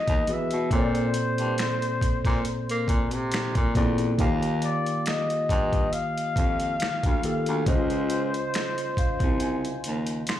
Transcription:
0.00 0.34 D#5 loud
0.08 0.26 D#2 medium
0.08 kick medium
0.08 closed hi-hat medium
0.27 0.68 E3 medium
0.27 0.69 B3 medium
0.27 0.69 F#4 medium
0.27 0.69 G#4 medium
0.27 0.70 B4 medium
0.27 closed hi-hat medium
0.33 0.74 E5 loud
0.51 0.70 B2 medium
0.51 closed hi-hat soft
0.71 1.10 A#2 loud
0.71 2.35 A#2 medium
0.71 2.36 A#3 medium
0.71 2.36 C4 medium
0.71 2.36 A4 medium
0.71 0.79 C#5 medium
0.71 kick loud
0.71 closed hi-hat medium
0.76 3.30 C5 medium
0.81 2.40 D5 medium
0.95 closed hi-hat soft
1.14 closed hi-hat medium
1.38 1.57 G2 medium
1.38 closed hi-hat soft
1.58 finger snap medium
1.58 snare loud
1.58 closed hi-hat medium
1.82 closed hi-hat soft
2.01 2.12 A#2 soft
2.01 kick medium
2.01 closed hi-hat medium
2.25 2.43 A#2 loud
2.25 kick medium
2.25 snare soft
2.25 closed hi-hat soft
2.45 closed hi-hat medium
2.69 2.87 A#3 medium
2.69 closed hi-hat soft
2.88 3.16 A#2 medium
2.88 kick medium
2.88 closed hi-hat medium
3.11 3.51 C3 medium
3.11 closed hi-hat medium
3.32 finger snap medium
3.32 snare loud
3.32 closed hi-hat medium
3.55 3.73 A#2 medium
3.55 kick medium
3.55 closed hi-hat soft
3.75 4.14 E2 loud
3.75 4.16 A#2 medium
3.75 4.16 A#3 medium
3.75 4.16 C4 medium
3.75 4.17 A4 medium
3.75 4.17 D5 medium
3.75 kick loud
3.75 snare soft
3.75 closed hi-hat medium
3.98 closed hi-hat medium
4.18 4.78 D#2 loud
4.18 5.83 D#3 medium
4.18 5.83 A#3 medium
4.18 5.83 F4 medium
4.18 5.83 G4 medium
4.18 5.84 F5 loud
4.18 kick loud
4.18 closed hi-hat medium
4.43 closed hi-hat soft
4.62 5.08 D5 loud
4.62 closed hi-hat medium
4.86 closed hi-hat soft
5.06 5.95 D#5 loud
5.06 finger snap medium
5.06 snare loud
5.06 closed hi-hat medium
5.30 closed hi-hat soft
5.49 5.88 G2 loud
5.49 kick medium
5.49 closed hi-hat medium
5.73 kick medium
5.73 closed hi-hat soft
5.93 7.67 F5 loud
5.93 closed hi-hat medium
6.18 closed hi-hat soft
6.36 6.75 F2 medium
6.36 kick medium
6.36 closed hi-hat medium
6.60 closed hi-hat soft
6.80 6.90 D2 soft
6.80 finger snap medium
6.80 snare loud
6.80 closed hi-hat medium
7.03 7.22 D2 medium
7.03 kick loud
7.03 closed hi-hat medium
7.23 7.64 D#3 medium
7.23 7.64 A#3 medium
7.23 7.65 F4 medium
7.23 7.65 G4 medium
7.23 7.65 A4 medium
7.23 closed hi-hat medium
7.46 7.65 D2 loud
7.46 closed hi-hat medium
7.66 8.44 C#2 loud
7.66 9.31 C#3 medium
7.66 9.31 C#4 medium
7.66 9.31 F4 medium
7.66 10.24 C5 medium
7.66 9.31 C5 medium
7.66 9.32 D#5 medium
7.66 kick loud
7.66 closed hi-hat medium
7.90 closed hi-hat soft
8.10 closed hi-hat medium
8.34 closed hi-hat soft
8.54 finger snap medium
8.54 snare loud
8.54 closed hi-hat medium
8.78 closed hi-hat soft
8.97 9.07 C2 soft
8.97 9.38 F5 medium
8.97 kick medium
8.97 closed hi-hat medium
9.20 9.77 C2 loud
9.20 kick medium
9.20 closed hi-hat soft
9.40 10.24 G#5 medium
9.40 closed hi-hat medium
9.65 closed hi-hat soft
9.84 10.23 D#2 medium
9.84 closed hi-hat medium
10.07 closed hi-hat medium
10.27 10.40 C6 medium
10.27 finger snap medium
10.27 snare loud
10.27 closed hi-hat medium

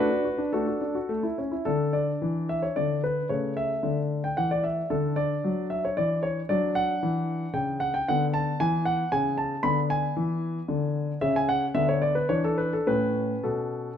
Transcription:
0.00 0.23 F#4 medium
0.00 0.49 B4 medium
0.10 0.26 D4 soft
0.25 0.40 F#4 soft
0.38 0.52 D4 soft
0.53 0.67 A3 medium
0.53 0.80 D4 soft
0.53 0.66 F#4 soft
0.53 1.34 A4 medium
0.67 0.83 F#4 soft
0.81 0.97 D4 soft
0.95 1.10 F#4 soft
1.09 1.24 A3 medium
1.23 1.39 E4 soft
1.38 1.53 C#4 soft
1.51 1.66 E4 soft
1.65 2.10 D3 soft
1.65 3.25 D4 soft
1.65 1.93 A4 medium
1.93 2.48 D5 medium
2.22 2.65 E3 soft
2.49 2.63 E5 medium
2.62 2.76 C#5 soft
2.76 3.19 D3 soft
2.76 3.00 D5 medium
3.04 3.27 B4 medium
3.29 3.72 C#3 soft
3.29 4.86 A3 soft
3.29 3.53 C#5 medium
3.57 3.96 E5 medium
3.83 4.25 D3 soft
4.24 4.37 G5 medium
4.37 4.80 E3 soft
4.37 4.50 F#5 medium
4.51 4.64 D5 medium
4.64 4.88 E5 medium
4.90 5.33 D3 medium
4.90 6.46 D4 soft
4.90 5.14 A4 medium
5.16 5.66 D5 medium
5.44 5.87 F#3 soft
5.70 5.83 E5 medium
5.85 5.97 C#5 medium
5.97 6.40 E3 soft
5.97 6.21 D5 medium
6.23 6.39 C#5 medium
6.49 6.92 F#3 medium
6.49 8.03 D4 soft
6.49 6.73 D5 medium
6.75 7.54 F#5 medium
7.03 7.44 E3 medium
7.53 7.96 C#3 soft
7.53 7.80 G5 medium
7.80 7.94 F#5 medium
7.94 8.07 G5 medium
8.08 8.50 D3 medium
8.08 9.61 B3 soft
8.08 8.24 F#5 medium
8.34 8.60 A5 medium
8.60 9.02 E3 medium
8.60 8.83 G#5 medium
8.85 9.12 F#5 medium
9.12 9.54 C#3 medium
9.12 9.38 G#5 medium
9.38 9.64 A5 medium
9.63 10.05 D3 medium
9.63 11.16 B3 soft
9.63 9.79 B5 medium
9.90 11.17 G#5 medium
10.16 10.58 E3 medium
10.68 11.11 D3 medium
11.21 11.64 C#3 medium
11.21 11.71 C#4 soft
11.21 11.34 E5 medium
11.36 11.49 G#5 medium
11.49 11.64 F#5 medium
11.74 12.18 D3 medium
11.74 12.26 B3 soft
11.74 11.88 E5 medium
11.89 12.02 C#5 medium
12.02 12.15 D5 medium
12.15 12.29 B4 medium
12.29 12.75 E3 soft
12.29 12.82 D4 soft
12.29 12.43 C#5 medium
12.44 12.58 A4 medium
12.58 12.72 B4 medium
12.73 12.87 A4 medium
12.87 13.33 A2 soft
12.87 13.97 C#4 soft
12.87 13.44 B4 medium
13.43 13.89 B2 soft
13.43 13.97 A4 medium

